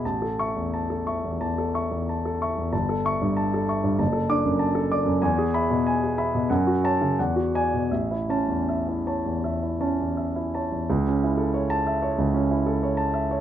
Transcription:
\new Staff \with { instrumentName = "Grand piano" } { \time 4/4 \key a \major \tempo 4 = 91 << { a''16 a'16 <e'' cis'''>16 e,16 a''16 a'16 <e'' cis'''>16 e,16 a''16 a'16 <e'' cis'''>16 e,16 a''16 a'16 <e'' cis'''>16 e,16 | a''16 a'16 <e'' cis'''>16 g,16 a''16 a'16 <e'' cis'''>16 g,16 a''16 a'16 <d'' d'''>16 fis,16 a''16 a'16 <d'' d'''>16 fis,16 | gis''16 gis'16 <e'' b''>16 b,16 gis''16 gis'16 <e'' b''>16 b,16 fis''16 fis'16 <cis'' a''>16 cis16 fis''16 fis'16 <d'' gis''>16 b,16 | e''16 e'16 <cis'' a''>16 e,16 e''16 e'16 <cis'' a''>16 e,16 e''16 e'16 <cis'' a''>16 e,16 e''16 e'16 <cis'' a''>16 e,16 |
r4 r16 a''8 r2 r16 | } \\ { a,,2 e,8. r4 r16 | g,,2 fis,,8 d'8. r8. | e,2 fis,4 e,4 | a,,8 cis'8. r8. e,8 cis'8. r8. |
cis,16 cis'16 e'16 a'16 cis''8 e''16 cis''16 cis,16 cis'16 e'16 a'16 cis''16 a''16 e''16 cis''16 | } >> }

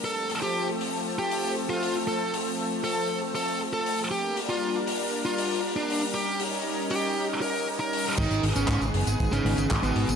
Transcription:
<<
  \new Staff \with { instrumentName = "Lead electric guitar" } { \time 4/4 \key ees \lydian \tempo 4 = 118 a'8 r16 g'8 r4 g'8. r16 f'8 r16 | a'8 r4 a'8. r16 a'8 r16 a'8 r16 | g'8 r16 f'8 r4 f'8. r16 d'8 r16 | g'8 r4 g'8. r16 bes'8 r16 bes'8 r16 |
\key gis \minor <dis dis'>8 r16 <cis cis'>8 r4 <cis cis'>8. r16 <b, b>8 r16 | }
  \new Staff \with { instrumentName = "Analog synth pad" } { \time 4/4 \key ees \lydian << { <f a'>1~ | <f a'>1 | <g bes'>1~ | <g bes'>1 |
\key gis \minor <dis gis'>1 | } \\ { <a c'>1~ | <a c'>1 | <bes d'>1 | <des' ees'>1 |
<gis b>1 | } >> }
  \new Staff \with { instrumentName = "Analog synth bass" } { \clef bass \time 4/4 \key ees \lydian r1 | r1 | r1 | r1 |
\key gis \minor gis,,16 gis,,16 gis,,16 gis,,16 gis,16 gis,,16 fis,,16 gis,,16 gis,,16 gis,,16 gis,,16 gis,,16 gis,,16 gis,,16 gis,,16 gis,,16 | }
  \new DrumStaff \with { instrumentName = "Drums" } \drummode { \time 4/4 r8 hho8 r8 hho8 r8 hho8 r8 hho8 | r8 hho8 r8 hho8 r8 hho8 r8 hho8 | r8 hho8 r8 hho8 r8 hho8 r8 hho8 | r8 hho8 r8 hho8 r8 hho8 r8 hho8 |
<cymc bd tamb>16 <hh tamb>16 hho16 <hh tamb>16 <hc hh bd tamb>16 <hh tamb>16 hho16 <hh tamb>16 <hh bd tamb>16 <hh tamb>16 hho16 <hh tamb>16 <hc hh bd tamb>16 <hh tamb>16 hho16 <hh tamb>16 | }
>>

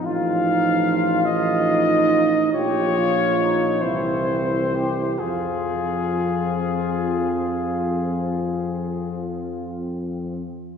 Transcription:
<<
  \new Staff \with { instrumentName = "Cornet" } { \time 12/8 \key f \minor \tempo 4. = 44 f''4. ees''4. des''4. c''4. | aes'1~ aes'8 r4. | }
  \new Staff \with { instrumentName = "Trombone section" } { \time 12/8 \key f \minor f'2. g'8 f'8 ees'8 e'8 e'8 g'8 | f'1~ f'4~ f'16 r8. | }
  \new Staff \with { instrumentName = "French horn section" } { \time 12/8 \key f \minor ees'4. ees'4. f'4. c'4. | c'1~ c'4. r8 | }
  \new Staff \with { instrumentName = "Euphonium" } { \clef bass \time 12/8 \key f \minor f4. f4 r8 f4. e4. | f1~ f4. r8 | }
  \new Staff \with { instrumentName = "Tuba" } { \clef bass \time 12/8 \key f \minor a,,2. bes,,4. c,4. | f,1~ f,4. r8 | }
>>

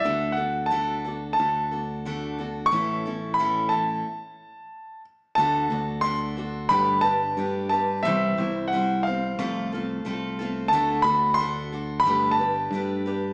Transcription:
<<
  \new Staff \with { instrumentName = "Grand piano" } { \time 4/4 \key d \mixolydian \tempo 4 = 90 e''8 fis''8 a''4 a''2 | cis'''4 b''8 a''2 r8 | a''4 c'''4 b''8 a''4 a''8 | e''4 fis''8 f''4 r4. |
a''8 b''8 c'''4 b''8 a''4. | }
  \new Staff \with { instrumentName = "Steel-string acoustic guitar" } { \time 4/4 \key d \mixolydian <d a d' fis' a'>8 <d' fis' a'>8 <d a d' fis' a'>8 <d' fis' a'>8 <a d' fis' a'>8 <d' fis' a'>8 <d a d' fis' a'>8 <d' fis' a'>8 | <a, e a cis' e' a'>8 <a cis' e' a'>8 <a, e a cis' e' a'>8 <a cis' e' a'>8 r2 | <d a d' fis' a'>8 <d' fis' a'>8 <a d' fis' a'>8 <d' fis' a'>8 <g a d' g' b'>8 <d' g' b'>8 <a d' g' b'>8 <d' g' b'>8 | <c e g c' e' c''>8 <g c' e' c''>8 <g c' e' c''>8 <g c' c''>8 <c f a c' f' a'>8 <a c' f' a'>8 <a c' f' a'>8 <a c' f' a'>8 |
<d a d' fis' a'>8 <d' fis' a'>8 <a d' fis' a'>8 <d' fis' a'>8 <g a d' g' b'>8 <d' g' b'>8 <a d' g' b'>8 <d' g' b'>8 | }
  \new Staff \with { instrumentName = "Fingered electric bass" } { \clef bass \time 4/4 \key d \mixolydian d,2 d,2 | a,,2 r2 | d,8 d,4. g,,4 g,4 | c,8 c,4. c,4 c,4 |
d,8 d,4. g,,4 g,4 | }
>>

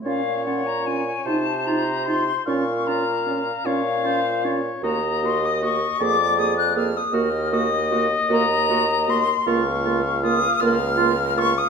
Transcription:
<<
  \new Staff \with { instrumentName = "Flute" } { \time 6/8 \key bes \minor \tempo 4. = 51 f''8 ges''16 bes''16 aes''8 a''8 bes''8 c'''8 | des'''8 bes''4 f''4. | bes''8 c'''16 ees'''16 des'''8 d'''8 ees'''16 ges'''16 f'''16 ees'''16 | f'''8 ees'''8. r16 bes''4 c'''8 |
des'''4 ees'''8 f'''4 des'''16 ees'''16 | }
  \new Staff \with { instrumentName = "Oboe" } { \time 6/8 \key bes \minor des''4. c''4. | f''4. des''8 c''8 des''8 | ees''4. d''4 r8 | ees''2. |
f''2. | }
  \new Staff \with { instrumentName = "Clarinet" } { \time 6/8 \key bes \minor f'8 f'8 f'8 f'8 f'8 f'8 | f'8 f'8 f'8 f'8 f'8 f'8 | ges'8 ges'8 ges'8 aes'8 aes'8 aes'8 | ges'8 ges'8 ges'8 ges'8 ges'8 ges'8 |
f'8 f'8 f'8 f'8 f'8 f'8 | }
  \new Staff \with { instrumentName = "French horn" } { \time 6/8 \key bes \minor des'8 des'8 des'8 ees'8 ees'8 ees'8 | des'8 des'8 des'8 des'8 des'8 des'8 | bes8 bes8 bes8 bes8 bes8 bes8 | bes8 bes8 bes8 bes8 bes8 bes8 |
bes8 bes8 bes8 bes8 bes8 bes8 | }
  \new Staff \with { instrumentName = "Bassoon" } { \clef bass \time 6/8 \key bes \minor bes,4. c4. | bes,4. bes,4. | ees,4. f,4. | ees,4. ees,4. |
des,4. des,4. | }
>>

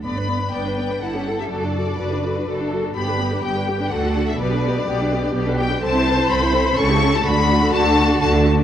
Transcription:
<<
  \new Staff \with { instrumentName = "Violin section" } { \time 3/4 \key g \major \tempo 4 = 125 b''4 g''4 fis''8. e''16 | d''2~ d''8 r8 | b''4 g''4 fis''8. e''16 | d''2~ d''8 g''8 |
a''4 b''4 cis'''8. a''16 | b''4 a''4 a''8 r8 | }
  \new Staff \with { instrumentName = "Violin section" } { \time 3/4 \key g \major r4 b'4 a'4~ | a'4 b'4 a'4 | g'2 a'4 | b'4 g'2 |
c''2 a'4 | fis'2. | }
  \new Staff \with { instrumentName = "Viola section" } { \time 3/4 \key g \major <b d''>16 <d' b'>16 <b d''>16 <d' b'>16 <b d''>16 <d' b'>16 <b d''>16 <d' b'>16 <e' a'>16 <cis' g'>16 <e' a'>16 <cis' g'>16 | <fis' a'>16 <d' fis'>16 <fis' a'>16 <d' fis'>16 <fis' a'>16 <d' fis'>16 <fis' a'>16 <d' fis'>16 <fis' a'>16 <d' fis'>16 <fis' a'>16 <d' fis'>16 | <b g'>16 <d' b'>16 <b g'>16 <d' b'>16 <b g'>16 <d' b'>16 <b g'>16 <d' b'>16 <fis' a'>16 <d' fis'>16 <fis' a'>16 <d' fis'>16 | <b g'>16 <d' b'>16 <b g'>16 <d' b'>16 <b g'>16 <d' b'>16 <b g'>16 <d' b'>16 <b g'>16 <d' b'>16 <b g'>16 <d' b'>16 |
<c' a'>16 <e' c''>16 <c' a'>16 <e' c''>16 <c' a'>16 <e' c''>16 <c' a'>16 <e' c''>16 <cis' a'>16 <e' g'>16 <cis' a'>16 <e' g'>16 | <a fis'>16 <d' a'>16 <a fis'>16 <d' a'>16 <a fis'>16 <d' a'>16 <a fis'>16 <d' a'>16 <a fis'>16 <d' a'>16 <a fis'>16 <d' a'>16 | }
  \new Staff \with { instrumentName = "Cello section" } { \clef bass \time 3/4 \key g \major g,4 g,4 g,4 | fis,4 fis,4 fis,4 | g,4 g,4 d4 | b,4 b,4 b,4 |
c4 c4 cis4 | d4 d4 d4 | }
  \new Staff \with { instrumentName = "Double bass section" } { \clef bass \time 3/4 \key g \major g,,4 g,,4 g,,4 | fis,,4 fis,,4 fis,,4 | g,,4 g,,4 d,4 | b,,4 b,,4 b,,4 |
c,4 c,4 cis,4 | d,4 d,4 d,4 | }
>>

